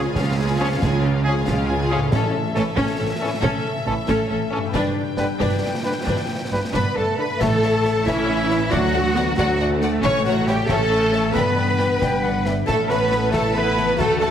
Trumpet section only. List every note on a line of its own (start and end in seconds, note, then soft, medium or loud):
0.59 0.67 G#4 medium
1.24 1.32 G#4 loud
1.89 1.97 G#4 medium
2.55 2.63 A4 medium
3.20 3.28 A4 medium
3.85 3.93 A4 medium
4.51 4.59 A4 medium
5.17 5.25 B4 medium
5.83 5.91 B4 medium
6.51 6.59 B4 medium
6.74 6.94 B4 medium
6.96 7.18 A4 medium
7.18 7.40 B4 medium
7.40 8.05 A4 loud
8.07 8.71 E4 loud
8.71 9.36 F#4 loud
9.37 9.59 F#4 loud
10.03 10.23 C#5 loud
10.25 10.35 F#4 medium
10.46 10.68 G4 loud
10.68 11.33 A4 loud
11.34 12.45 B4 loud
12.67 12.88 A4 loud
12.90 13.34 B4 loud
13.33 13.43 A4 loud
13.56 13.99 B4 loud
13.98 14.19 A4 loud
14.20 14.31 A4 loud